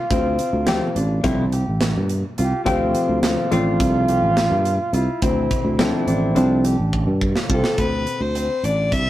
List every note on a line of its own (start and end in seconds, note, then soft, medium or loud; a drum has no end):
0.00 2.11 F4 medium
0.10 0.37 D2 medium
0.10 0.61 C4 medium
0.10 kick medium
0.10 closed hi-hat medium
0.39 closed hi-hat medium
0.53 0.79 D2 medium
0.67 0.87 F3 medium
0.67 0.87 A3 medium
0.67 0.92 C4 medium
0.67 0.87 C4 medium
0.67 0.87 G4 medium
0.67 snare loud
0.67 closed hi-hat medium
0.96 1.22 A1 medium
0.96 1.46 D4 medium
0.96 closed hi-hat medium
1.24 1.63 C2 loud
1.24 1.44 F3 medium
1.24 1.44 A3 medium
1.24 1.44 C4 medium
1.24 1.44 E4 medium
1.24 kick loud
1.24 closed hi-hat medium
1.52 2.03 G4 medium
1.52 closed hi-hat medium
1.68 1.94 A1 medium
1.81 snare loud
1.81 closed hi-hat medium
1.97 2.22 G2 medium
2.09 closed hi-hat medium
2.37 2.52 C2 medium
2.37 2.63 F4 medium
2.37 2.64 G4 loud
2.37 closed hi-hat medium
2.65 2.92 D2 medium
2.65 3.46 F3 medium
2.65 3.46 A3 medium
2.65 3.46 C4 medium
2.65 3.17 C4 medium
2.65 3.19 F4 loud
2.65 3.46 G4 medium
2.65 kick medium
2.65 closed hi-hat medium
2.95 closed hi-hat medium
3.09 3.35 D2 medium
3.22 3.49 C4 medium
3.22 4.96 F4 loud
3.22 snare loud
3.22 closed hi-hat medium
3.51 3.78 A1 medium
3.51 4.31 F3 medium
3.51 4.31 A3 medium
3.51 4.31 C4 medium
3.51 4.02 D4 medium
3.51 4.31 F4 medium
3.51 closed hi-hat medium
3.80 4.19 C2 loud
3.80 kick loud
3.80 closed hi-hat medium
4.08 4.59 G4 medium
4.08 closed hi-hat medium
4.22 4.49 A1 medium
4.37 snare loud
4.37 closed hi-hat medium
4.51 4.77 G2 medium
4.65 closed hi-hat medium
4.93 5.06 C2 medium
4.93 5.81 E4 medium
4.93 5.19 F4 medium
4.93 closed hi-hat medium
5.22 5.48 D2 medium
5.22 5.73 C4 medium
5.22 kick medium
5.22 closed hi-hat medium
5.51 kick medium
5.51 closed hi-hat medium
5.65 5.91 D2 medium
5.79 6.34 F3 medium
5.79 6.34 A3 medium
5.79 6.04 C4 medium
5.79 6.34 C4 medium
5.79 6.09 D4 medium
5.79 6.59 E4 medium
5.79 snare loud
5.79 closed hi-hat medium
6.07 6.33 A1 medium
6.07 6.67 C4 medium
6.07 6.58 D4 medium
6.07 closed hi-hat medium
6.35 6.75 C2 medium
6.35 6.76 F3 medium
6.35 6.76 A3 medium
6.35 6.76 C4 medium
6.35 6.76 D4 medium
6.35 closed hi-hat medium
6.65 7.23 D4 medium
6.65 7.15 G4 medium
6.65 closed hi-hat medium
6.79 7.05 A1 medium
6.93 kick medium
7.07 7.33 G2 medium
7.21 kick medium
7.36 snare medium
7.49 7.63 C2 medium
7.49 7.77 C4 medium
7.49 7.75 F4 medium
7.49 7.81 A4 medium
7.49 kick medium
7.64 snare medium
7.78 8.04 D2 medium
7.78 8.29 C4 medium
7.78 8.23 B4 medium
7.78 kick medium
7.78 closed hi-hat medium
8.07 closed hi-hat medium
8.21 8.47 D2 medium
8.21 8.66 C5 medium
8.35 8.60 C4 medium
8.35 closed hi-hat medium
8.63 8.90 A1 medium
8.63 9.10 D4 medium
8.63 8.94 D5 medium
8.63 closed hi-hat medium
8.92 9.10 C2 medium
8.92 9.10 E5 medium
8.92 kick medium
8.92 closed hi-hat medium